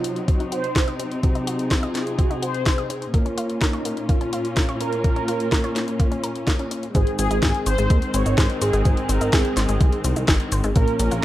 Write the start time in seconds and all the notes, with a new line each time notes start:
Already playing: C3 F#3 C4 D#4 F4
0.04 C4, closed hi-hat
0.16 closed hi-hat
0.28 C4 F#4, kick, closed hi-hat
0.40 D#4, closed hi-hat
0.52 F#4 C5, closed hi-hat
0.64 closed hi-hat
0.76 C5, kick, snare, closed hi-hat
0.88 D#5, closed hi-hat
1.00 C4, closed hi-hat
1.11 closed hi-hat
1.23 C3 F#3 C4 D#4 G#4, kick, closed hi-hat
1.35 D#4, closed hi-hat
1.47 F#4, closed hi-hat
1.59 closed hi-hat
1.71 F4 C5, kick, snare, closed hi-hat
1.83 D#5, closed hi-hat
1.95 C4, snare, closed hi-hat
2.07 closed hi-hat
2.18 C4 F#4, kick, closed hi-hat
2.30 D#4, closed hi-hat
2.42 F#4 C5, closed hi-hat
2.54 closed hi-hat
2.66 C5, kick, snare, closed hi-hat
2.78 D#5, closed hi-hat
2.90 C4, closed hi-hat
3.02 closed hi-hat
3.14 A#2 A#3 C#4 F4 A#4, kick, closed hi-hat
3.26 C#4, closed hi-hat
3.38 F4, closed hi-hat
3.50 closed hi-hat
3.61 D#4 A#4, kick, snare, closed hi-hat
3.73 C#5, closed hi-hat
3.85 A#3, closed hi-hat
3.97 closed hi-hat
4.09 A#3 F4, kick, closed hi-hat
4.21 C#4, closed hi-hat
4.33 F4, closed hi-hat
4.45 closed hi-hat
4.57 A#4, kick, snare, closed hi-hat
4.69 C#5, closed hi-hat
4.80 A#3 A#4, closed hi-hat
4.93 closed hi-hat
5.04 A#2 A#3 C#4 F4 A#4, kick, closed hi-hat
5.16 C#4, closed hi-hat
5.28 F4, closed hi-hat
5.40 closed hi-hat
5.52 A#4, kick, snare, closed hi-hat
5.64 C#5, closed hi-hat
5.76 A#3, snare, closed hi-hat
5.88 closed hi-hat
6.00 A#3, kick, closed hi-hat
6.12 C#4, closed hi-hat
6.23 A#4, closed hi-hat
6.36 closed hi-hat
6.47 A#3, kick, snare, closed hi-hat
6.59 C#4, closed hi-hat
6.71 C#4, closed hi-hat
6.83 closed hi-hat
6.95 G#1 G#2 D#3 G#3 C4 D#4 G#4 C5, kick, closed hi-hat, cabasa
7.07 closed hi-hat
7.19 G#1 C4 G#4, closed hi-hat, cabasa
7.31 G#1 D#4, closed hi-hat, cabasa
7.43 G#1 G#4, kick, snare, closed hi-hat, cabasa
7.54 closed hi-hat
7.66 G#1 C5, closed hi-hat, cabasa
7.78 G#1 G#3, closed hi-hat, cabasa
7.90 D#2 G#3, kick, closed hi-hat, cabasa
8.02 closed hi-hat
8.14 G#1 C4 C#5, closed hi-hat, cabasa
8.26 G#1 D#4, closed hi-hat, cabasa
8.38 G#1 G#4 C5, kick, snare, closed hi-hat, cabasa
8.50 closed hi-hat
8.62 G#1 G#4 C5, closed hi-hat, cabasa
8.73 G#1 G#3, closed hi-hat, cabasa
8.85 G#1 G#2 G#3 C4 D#4 G#4 C5, kick, closed hi-hat, cabasa
8.97 closed hi-hat
9.09 G#1 C4 A#4, closed hi-hat, cabasa
9.21 G#1 D#4, closed hi-hat, cabasa
9.33 G#1 G#4, kick, snare, closed hi-hat, cabasa
9.45 closed hi-hat
9.57 G#1 G#4 C5, snare, closed hi-hat, cabasa
9.69 G#1 G#3, closed hi-hat, cabasa
9.81 C2 G#3, kick, closed hi-hat, cabasa
9.92 closed hi-hat
10.04 C2 C4, closed hi-hat, cabasa
10.16 C2 D#4, closed hi-hat, cabasa
10.28 G#1 G#4, kick, snare, closed hi-hat, cabasa
10.40 closed hi-hat
10.52 G#1 C5, closed hi-hat, cabasa
10.64 G#1 G#3, closed hi-hat, cabasa
10.76 A#1 A#2 F3 A#3 C#4 F4 A#4, kick, closed hi-hat, cabasa
10.88 closed hi-hat
10.99 A#1 C#4 A#4, closed hi-hat, cabasa
11.11 A#1 F4, closed hi-hat, cabasa